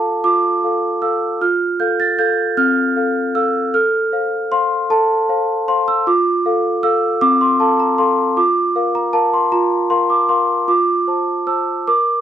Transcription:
Already playing: F4 A4 F5 A5 D6
0.24 F4 D6
0.64 A4 F5
1.02 A4 F5 E6
1.41 F4 F6
1.80 A4 F5 G6
2.00 A6
2.18 A4 F5 G6
2.57 C4 F6
2.96 A4 F5
3.35 A4 F5 E6
3.74 A4 F6
4.12 C5 F5
4.52 C5 F5 C6
4.90 A4 A5
5.29 C5 F5
5.68 C5 F5 C6
5.88 E6
6.07 F4 D6
6.46 A4 F5
6.83 A4 F5 E6
7.21 C4 D6
7.41 C6
7.60 A4 F5 A5
7.80 A#5
7.98 A4 F5 C6
8.37 F4 D6
8.76 A#4 F5
8.95 A#5
9.13 A#4 F5 A5
9.34 C6
9.52 F4 A#5
9.90 A#4 F5 C6
10.10 D6
10.29 A#4 F5 C6
10.68 F4 D6
11.07 C5 A5
11.47 C5 A5 E6
11.87 A#4 D6

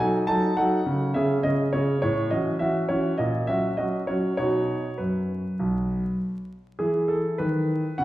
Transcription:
0.00 F#3 D#4 A4 G#5
0.27 F#3 D#4 A4 A5
0.57 F#3 D#4 A4 F#5
0.86 C#3
1.14 C#3 C#4 G#4 E5
1.43 C#3 C#4 G#4 D#5
1.73 C#3 C#4 G#4 C#5
2.02 A2 C#5
2.30 E3 C#4 F#4 D#5
2.59 E3 C#4 F#4 E5
2.89 E3 C#4 F#4 C#5
3.18 A#2 D#5
3.47 F#3 C#4 F#4 E5
3.77 F#3 C#4 F#4 D#5
4.07 F#3 C#4 F#4 C#5
4.37 B2 D#4 F#4 C#5
4.98 F#2 B4
5.59 B1
6.79 E3 E4 G#4
7.08 A4
7.38 D#3 B4
7.98 C#3 F#5

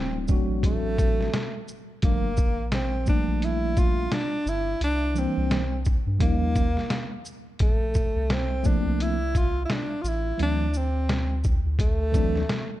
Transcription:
Already playing: D1 F#3 A3 C4 D4 E4
0.28 F#3 A3 C4 D4 F#4, kick, shaker
0.48 A1
0.63 A3, kick, closed hi-hat
0.98 kick, closed hi-hat, shaker
1.20 snare
1.34 snare, closed hi-hat
1.68 shaker
2.02 G1 F3 G3 A3 A#3 D4, kick, closed hi-hat
2.37 kick, shaker
2.58 A#1
2.72 C4, snare, closed hi-hat
3.05 F3 G3 A3 A#3 D4, kick, shaker
3.28 A#1
3.42 E4, closed hi-hat
3.77 F4, kick, closed hi-hat, shaker
4.12 D4, snare, closed hi-hat
4.46 G1 E4, shaker
4.81 C2 D4, closed hi-hat
5.14 E3 G3 A#3 C4 D4, shaker
5.19 C4
5.37 C2
5.51 snare, closed hi-hat
5.85 kick, shaker
6.07 G2
6.19 D#2 F3 G3 A#3 C#4 D#4, kick, closed hi-hat
6.55 kick, closed hi-hat, shaker
6.77 snare
6.90 snare, closed hi-hat
7.25 shaker
7.59 A#1 A3, kick, closed hi-hat
7.94 kick, shaker
8.16 C2
8.30 C4, snare, closed hi-hat
8.63 F3 A3 A#3 C4 D4, kick, shaker
8.86 C2
9.00 E4, closed hi-hat
9.35 F4, kick, closed hi-hat, shaker
9.66 E4
9.70 D4, snare, closed hi-hat
10.02 A1 F4, shaker
10.08 E4
10.38 D2 E3 F#3 A3 C4 D4, closed hi-hat
10.43 D4
10.74 C4, shaker
11.09 snare, closed hi-hat
11.44 kick, shaker
11.65 D2
11.79 A3, kick, closed hi-hat
12.12 E3 F#3 A3 C4 D4, kick, closed hi-hat, shaker
12.35 snare
12.49 snare, closed hi-hat

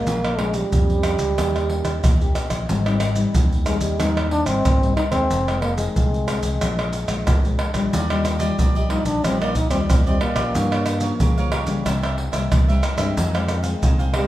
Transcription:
Already playing: F3 G#3 A#3 C#4
0.07 A#1 A#2, pandeiro, maracas, surdo
0.25 pandeiro, tamborim, maracas
0.39 F3 G#3 C#4, pandeiro, tamborim
0.54 G3, pandeiro, maracas
0.72 F2, pandeiro, maracas, surdo
0.90 F3 C#4, pandeiro, maracas
1.03 pandeiro, tamborim, maracas
1.19 C#2, pandeiro, maracas
1.38 D#2 D#3 A#3 C#4 G4, pandeiro, tamborim, maracas, surdo
1.56 pandeiro, tamborim, maracas
1.70 A#3 C#4 G4, pandeiro
1.84 D#2, pandeiro, tamborim, maracas
2.04 D#2, pandeiro, tamborim, maracas, surdo
2.21 A#3 C#4 G4, pandeiro, maracas
2.35 pandeiro, tamborim, maracas
2.50 A#1, pandeiro, tamborim, maracas
2.69 G#1 G#2 G3 C4 D#4, pandeiro, maracas, surdo
2.86 G3 C4 D#4, pandeiro, tamborim, maracas
3.00 pandeiro, tamborim, maracas
3.15 G3 C4 D#4, pandeiro, maracas
3.34 D#2 D#3, pandeiro, maracas, surdo
3.52 pandeiro, maracas
3.65 G3 G#3 C4 D#4, pandeiro, tamborim, maracas
3.81 D#2 G3, pandeiro, maracas
3.99 D#2 G#2 G3 C4 D#4, pandeiro, tamborim, maracas, surdo
4.17 pandeiro, tamborim, maracas
4.31 D4, pandeiro
4.45 G#1 G3 C4 D#4, pandeiro, tamborim, maracas
4.65 G#1 D#3, pandeiro, tamborim, maracas, surdo
4.82 G3 C4 D#4, pandeiro, maracas
4.97 D#4, pandeiro, tamborim
5.11 D#2 D#3 G#3 C4, pandeiro, tamborim, maracas
5.30 F1 F2, pandeiro, maracas, surdo
5.47 D#3 G#3 C4, pandeiro, tamborim, maracas
5.62 A#3, pandeiro, tamborim
5.77 D#3 G#3 C4, pandeiro, maracas
5.96 C2 C3, pandeiro, maracas, surdo
6.14 pandeiro, maracas
6.27 D#3 G#3 C4, pandeiro, tamborim, maracas
6.43 C2, pandeiro, maracas
6.61 A#1 A#2 F3 G#3 D4, pandeiro, tamborim, maracas, surdo
6.79 pandeiro, tamborim, maracas
6.93 pandeiro, maracas
7.08 A#1 F3 G#3 D4, pandeiro, tamborim, maracas
7.27 A#1 F2, pandeiro, tamborim, maracas, surdo
7.45 F3 G#3 D4, pandeiro, maracas
7.59 pandeiro, tamborim
7.74 A#1 G3 D4 F4, pandeiro, tamborim, maracas
7.93 D#2 D#3 D4 G4 D5 D#5, pandeiro, maracas, surdo
8.10 G3 D4 F4 G4 D5 D#5, pandeiro, tamborim, maracas
8.24 muted cavaquinho stroke, pandeiro, tamborim, maracas
8.39 G3 D4 F4 G4 D5 D#5, pandeiro, maracas
8.59 A#1 A#2 D4 G4 D5 D#5, pandeiro, maracas, surdo
8.75 G4 D5 D#5, pandeiro, maracas
8.90 G3 D4 D#4 F4 G4 D5 D#5, pandeiro, tamborim
9.05 A#1 D4, pandeiro, maracas
9.24 A#1 D#3 G3 C4 D4 F4 G4 D5 D#5, pandeiro, tamborim, maracas, surdo
9.41 A#3 G4 D5 D#5, pandeiro, tamborim, maracas
9.55 D#4, muted cavaquinho stroke, pandeiro, maracas, surdo
9.70 D#2 G3 C4 D4 F4 G4 D5 D#5, pandeiro, tamborim, maracas
9.90 D#2 A#2 C4, pandeiro, tamborim, maracas, surdo
9.97 A#3
10.04 G3 C4 D4 D5 D#5, pandeiro, maracas
10.08 F4 G4
10.20 A#3 D4 G4 D5 D#5, pandeiro, tamborim
10.36 A#1 F3 A#3 C#4 G4 D5 D#5, pandeiro, tamborim, maracas
10.54 G2 G4 A#4 C#5 F5, pandeiro, maracas, surdo
10.71 A#4 C#5 F5, pandeiro, tamborim, maracas
10.86 muted cavaquinho stroke, pandeiro, tamborim, maracas
11.01 F3 A#3 C#4 A#4 C#5 F5, pandeiro, maracas
11.20 G2 C#3 G4 A#4 C#5 F5, pandeiro, maracas, surdo
11.38 F3 A#3 C#4 A#4 C#5 F5, pandeiro, maracas
11.52 G4 A#4 C#5 F5, pandeiro, tamborim
11.67 C#3 G3 A#3 E4, pandeiro, maracas
11.85 C2 C3 E4 A#4 C5 E5, pandeiro, tamborim, maracas, surdo
12.03 A#4 C5 E5, pandeiro, tamborim, maracas
12.17 muted cavaquinho stroke, pandeiro
12.32 C2 G3 A#3 E4 A#4 C5 E5, pandeiro, tamborim, maracas
12.52 C2 G2, pandeiro, tamborim, maracas, surdo
12.68 G3 A#3 E4 A#4 C5 E5, pandeiro, maracas
12.83 E4 A#4 C5 E5, pandeiro, tamborim, maracas
12.98 G2 D#3 G#3 C4 A#4 C5 E5, pandeiro, tamborim, maracas
13.17 F2 D#4 G#4 C5 F5, pandeiro, maracas, surdo
13.34 D#3 G#3 C4 G#4 C5 F5, pandeiro, tamborim, maracas
13.48 muted cavaquinho stroke, pandeiro, tamborim, maracas
13.63 D#3 G#3 C4 G#4 C5 F5, pandeiro, maracas
13.82 C2 C3 D#4 G#4 C5 F5, pandeiro, maracas, surdo
13.99 G#4 C5 F5, pandeiro, maracas
14.14 D#3 G3 G#3 C4 D#4 G#4 C5 F5, pandeiro, tamborim

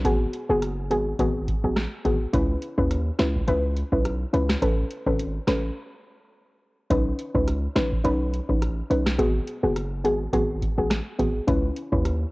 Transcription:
0.05 G#1 B3 F#4 G#4, kick, closed hi-hat
0.33 closed hi-hat
0.49 F#1 B3 F#4 G#4
0.62 cross-stick, closed hi-hat
0.90 G#1 B3 F#4 G#4, closed hi-hat
1.19 G#1 B3 F#4 G#4, kick, closed hi-hat
1.48 kick, closed hi-hat
1.64 A1 B3 F#4 G#4
1.76 cross-stick, snare, closed hi-hat
2.05 G#1 B3 F#4 G#4, kick, closed hi-hat
2.33 C#2 C#4 E4 B4, kick, closed hi-hat
2.62 closed hi-hat
2.78 D#2 C#4 E4 B4, kick
2.91 cross-stick, closed hi-hat
3.19 C#2 C#4 E4 B4, cross-stick, snare, closed hi-hat
3.35 kick
3.47 C#2 C#4 E4 B4, closed hi-hat
3.77 closed hi-hat
3.92 B1 C#4 E4 B4, kick
4.05 cross-stick, closed hi-hat
4.33 C#2 C#4 E4 B4, closed hi-hat
4.49 cross-stick, snare
4.62 A1 C#4 A4 B4, kick, closed hi-hat
4.91 closed hi-hat
5.06 G#1 C#4 A4 B4, kick
5.19 closed hi-hat
5.47 A1 C#4 A4 B4, cross-stick, snare, closed hi-hat
6.90 B1 C#4 D#4 B4, kick, closed hi-hat
7.19 closed hi-hat
7.35 C#2 C#4 D#4 B4, kick
7.48 cross-stick, closed hi-hat
7.76 A1 C#4 D#4 B4, cross-stick, snare, closed hi-hat
7.92 kick
8.04 B1 C#4 D#4 B4, closed hi-hat
8.34 closed hi-hat
8.49 A1 C#4 D#4 B4, kick
8.62 cross-stick, closed hi-hat
8.90 B1 C#4 D#4 B4, closed hi-hat
9.06 cross-stick, snare
9.19 G#1 B3 F#4 G#4, kick, closed hi-hat
9.48 closed hi-hat
9.63 F#1 B3 F#4 G#4
9.76 cross-stick, closed hi-hat
10.04 G#1 B3 F#4 G#4, closed hi-hat
10.33 G#1 B3 F#4 G#4, kick, closed hi-hat
10.62 kick, closed hi-hat
10.78 A1 B3 F#4 G#4
10.90 cross-stick, snare, closed hi-hat
11.19 G#1 B3 F#4 G#4, kick, closed hi-hat
11.47 C#2 C#4 E4 B4, kick, closed hi-hat
11.76 closed hi-hat
11.92 D#2 C#4 E4 B4, kick
12.05 cross-stick, closed hi-hat

